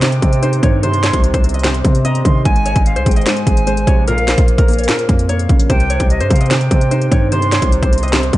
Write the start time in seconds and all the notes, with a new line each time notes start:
Already playing: C3 C4 A#4 D#5
0.02 C3 C5 G5, snare, clap, closed hi-hat
0.12 closed hi-hat
0.22 C3 C4, kick, closed hi-hat
0.33 closed hi-hat
0.42 D#4 C5, closed hi-hat
0.53 closed hi-hat
0.63 G2 D#3 C#5, kick, closed hi-hat
0.83 C3 C5 C6, closed hi-hat
0.94 closed hi-hat
1.03 C#5, snare, clap, closed hi-hat
1.13 C2, kick, closed hi-hat
1.24 closed hi-hat
1.34 C2 C5, kick, closed hi-hat
1.44 C4, closed hi-hat
1.49 closed hi-hat
1.54 D#5, closed hi-hat
1.59 closed hi-hat
1.64 C3 C5, snare, clap, closed hi-hat
1.74 closed hi-hat
1.84 C3 C4, kick, closed hi-hat
1.95 closed hi-hat
2.05 C4 D#5 A#5, closed hi-hat
2.15 closed hi-hat
2.25 C3 D#3 C6, kick, closed hi-hat
2.45 G#1 G#2 G#5, kick, closed hi-hat
2.56 closed hi-hat
2.66 C#5, closed hi-hat
2.76 G#1, kick, closed hi-hat
2.86 F5, closed hi-hat
2.96 C2 C5, closed hi-hat
3.06 G#1 G#3 G5, kick, closed hi-hat
3.11 closed hi-hat
3.16 D#5, closed hi-hat
3.21 closed hi-hat
3.26 G#2 C5 G#5, snare, clap, closed hi-hat
3.37 closed hi-hat
3.47 G#1 G#3, kick, closed hi-hat
3.57 closed hi-hat
3.67 G#3 C5, closed hi-hat
3.77 closed hi-hat
3.87 A#1 C3 C#5, kick, closed hi-hat
4.07 A#2 A#4 F5, closed hi-hat
4.18 closed hi-hat
4.28 C5, snare, clap, closed hi-hat
4.38 A#1, kick, closed hi-hat
4.48 closed hi-hat
4.58 A#1 A#4, kick, closed hi-hat
4.68 A#3, closed hi-hat, open hi-hat
4.73 closed hi-hat
4.78 C#5, closed hi-hat
4.84 closed hi-hat
4.89 A#2 A#4, snare, clap, closed hi-hat
4.99 closed hi-hat
5.09 F2 A#3, kick, closed hi-hat
5.19 closed hi-hat
5.29 A#3 C#5, closed hi-hat
5.39 closed hi-hat
5.49 A#1 C#3, kick, closed hi-hat
5.60 closed hi-hat
5.70 C2 C3 C5 G5, kick, closed hi-hat
5.80 closed hi-hat
5.90 C#5, closed hi-hat
6.00 C2, kick, closed hi-hat
6.10 D#5, closed hi-hat
6.20 G2 C5, closed hi-hat
6.30 C3 C4 F5, kick, closed hi-hat
6.36 closed hi-hat
6.41 D#5, closed hi-hat
6.46 closed hi-hat
6.51 C3 C5 G5, snare, clap, closed hi-hat
6.61 closed hi-hat
6.71 C3 C4, kick, closed hi-hat
6.81 closed hi-hat
6.91 D#4 C5, closed hi-hat
7.02 closed hi-hat
7.12 G2 D#3 C#5, kick, closed hi-hat
7.32 C3 C5 C6, closed hi-hat
7.42 closed hi-hat
7.52 C#5, snare, clap, closed hi-hat
7.62 C2, kick, closed hi-hat
7.72 closed hi-hat
7.83 C2 C5, kick, closed hi-hat
7.93 C4, closed hi-hat
7.98 closed hi-hat
8.03 D#5, closed hi-hat
8.08 closed hi-hat
8.13 C3 C5, snare, clap, closed hi-hat
8.23 closed hi-hat
8.33 C3 C4, kick, closed hi-hat